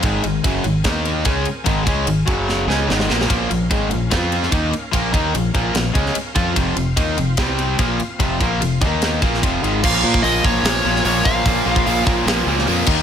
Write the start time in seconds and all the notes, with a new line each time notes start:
Already playing: A#4
0.03 G#1 G#2 D#3 G#3 C4 G#5, kick, ride
0.23 G#1 G#2 D#3, ride
0.44 F#1 F#2 C#3 F#3, kick, ride
0.64 G#1 G#2 D#3, ride
0.84 D#2 D#3 A#3 D#4 A#4 A#5, kick, snare, ride
1.05 ride
1.25 C#2 C#3 G#3 C4 C#4 G#5, kick, ride
1.45 muted fingered electric bass stroke, muted overdriven electric guitar stroke, ride
1.64 G#1 G#2 D#3 G#3, kick, ride
1.85 C#2 C#3 G#3 C#4, kick, ride
2.06 G#1 G#2 D#3, ride
2.26 F#1 F#2 C#3 F#3 C#4 F#4 F#5, kick, ride
2.49 snare
2.67 C#2 C#3 G#3 C4 C#4 A#4 G#5, snare
2.87 G#1 G#2 D#3 G#3, snare
3.00 snare
3.09 A#1 A#2 F3 A#3, snare
3.21 snare
3.29 A#1 A#2 F3 A#3 C#4 F5, kick, ride
3.49 A#1 A#2 F3, ride
3.70 G#1 G#2 D#3 G#3, kick, ride
3.90 A#1 A#2 F3, ride
4.10 F2 F3 C4 F4 F5, kick, snare, ride
4.32 ride
4.43 snare
4.51 D#2 D#3 A#3 C#4 D#4 A#4, kick, ride
4.72 muted overdriven electric guitar stroke, muted fingered electric bass stroke, ride
4.92 A#1 A#2 F3 A#3, kick, ride
5.12 D#2 D#3 A#3 D#4, kick, ride
5.34 A#1 A#2 F3, ride
5.54 A#1 A#2 F3 A#3, kick, ride
5.74 A#1 A#2 F3, snare, ride
5.93 C#2 C#3 G#3 C#4, kick, ride
6.06 snare
6.15 muted overdriven electric guitar stroke, muted fingered electric bass stroke, ride
6.35 F2 F3 C4 F4, kick, ride
6.55 F1 F2 C3 F3 C4 F4, kick, ride
6.76 F1 F2 C3, ride
6.96 D#2 D#3 A#3 D#4, kick, ride
7.17 F1 F2 C3, ride
7.37 C2 C3 G3 C4 G4 G5, kick, snare, ride
7.59 ride
7.79 A#1 A#2 F3 A#3 F4 F5, kick, ride
8.00 muted fingered electric bass stroke, muted overdriven electric guitar stroke, ride
8.19 F1 F2 C3 F3, kick, ride
8.40 A#1 A#2 F3 A#3, kick, ride
8.61 F1 F2 C3, ride
8.81 D#2 D#3 A#3 D#4 A#4 A#5, kick, ride
9.02 snare, ride
9.21 A#1 A#2 F3 A#3 C4 F4 F5, kick, ride
9.34 snare
9.42 F1 F2 C3 F3, kick, ride
9.63 G#1 G#2 D#3 G#3, ride
9.83 A#1 A#2 F3 A#3 F4 C#5 F5, kick, crash
10.03 A#2 F3 A#3
10.14 kick
10.23 A#1 A#2 F3 A#3 D#5, open hi-hat
10.44 A#1 A#2 F3 A#3 C#5, kick
10.63 A#1 A#2 F3 A#3, snare, open hi-hat
10.85 A#1 A#2 F3 A#3
10.96 snare
11.05 A#1 A#2 F3 A#3 C#5, open hi-hat
11.25 A#1 A#2 F3 A#3 F5, kick
11.45 A#1 A#2 F3 A#3, kick, open hi-hat
11.66 A#1 A#2 F3 A#3
11.76 kick
11.86 A#1 A#2 F3 A#3, open hi-hat
12.06 A#1 A#2 F3 A#3, kick
12.25 A#1 A#2 F3 A#3, snare, open hi-hat
12.46 C#2 A#2 F3 A#3
12.59 snare
12.67 F2 A#2 F3 A#3, open hi-hat
12.86 D#2 D#3 A#3 D#4 A#4 F#5, kick, crash